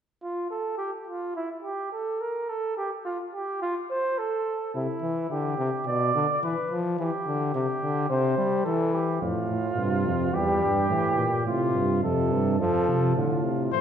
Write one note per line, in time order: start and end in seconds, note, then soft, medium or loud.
0.22 0.49 F4 medium
0.50 0.77 A4 medium
0.77 0.91 G4 medium
1.07 1.35 F4 medium
1.36 1.49 E4 medium
1.63 1.92 G4 medium
1.92 2.22 A4 medium
2.21 2.51 A#4 medium
2.49 2.77 A4 medium
2.77 2.90 G4 medium
3.05 3.18 F4 medium
3.34 3.61 G4 medium
3.62 3.75 F4 medium
3.90 4.20 C5 medium
4.18 4.74 A4 medium
4.74 4.87 C3 medium
4.74 5.29 E4 medium
5.02 5.29 E3 medium
5.30 5.58 D3 medium
5.30 5.86 G4 medium
5.58 5.71 C3 medium
5.87 6.14 B2 medium
5.87 6.41 D5 medium
6.15 6.27 D3 medium
6.43 6.55 E3 medium
6.43 6.78 B4 medium
6.71 6.98 F3 medium
6.99 7.11 E3 medium
6.99 7.50 G4 medium
7.27 7.54 D3 medium
7.55 7.67 C3 medium
7.55 8.09 G4 medium
7.82 8.09 D3 medium
8.10 8.37 C3 medium
8.10 8.66 C5 medium
8.38 8.65 G3 medium
8.64 9.21 E3 medium
8.64 8.95 A4 medium
8.93 9.20 G4 medium
9.21 9.34 F2 medium
9.21 9.79 A2 medium
9.21 10.35 F4 medium
9.50 9.77 A2 medium
9.77 10.07 G2 medium
9.77 10.34 C3 medium
10.06 10.33 F2 medium
10.33 10.64 E2 medium
10.33 10.89 G3 medium
10.33 11.46 G4 medium
10.62 10.89 G2 medium
10.90 11.16 A2 medium
10.90 11.26 E3 medium
11.17 11.47 A#2 medium
11.46 11.74 A2 medium
11.46 11.99 C3 medium
11.46 12.02 F4 medium
11.74 12.04 G2 medium
12.03 12.33 F2 medium
12.03 12.59 C3 medium
12.03 12.59 A4 medium
12.31 12.61 G2 medium
12.59 12.87 F2 medium
12.59 13.15 F3 medium
12.59 13.15 A4 medium
12.88 13.16 C3 medium
13.16 13.72 A2 medium
13.16 13.45 D3 medium
13.16 13.72 F4 medium
13.43 13.72 C3 medium
13.72 13.81 A2 medium
13.72 13.81 E3 medium
13.72 13.81 E4 medium
13.72 13.81 C5 medium